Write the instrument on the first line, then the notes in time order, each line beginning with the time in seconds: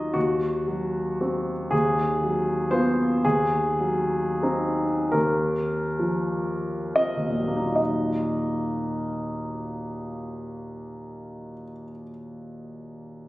grand piano
Already playing: D#2 F#3 D#4 F4 D#5
0.14 D#2 F#4
0.68 F#3
1.21 C4 F#4
1.71 D#2 G#4
2.23 F#3
2.71 B3 F4 C5
3.25 D#2 G#4
3.80 F#3
4.43 C4 D#4
5.12 D#2 A#4
5.99 F3
6.96 C4 F4 D#5
7.17 D#2
7.27 A#2
7.37 F#3
7.48 A#3
7.57 D#4
7.67 F4
7.76 D#5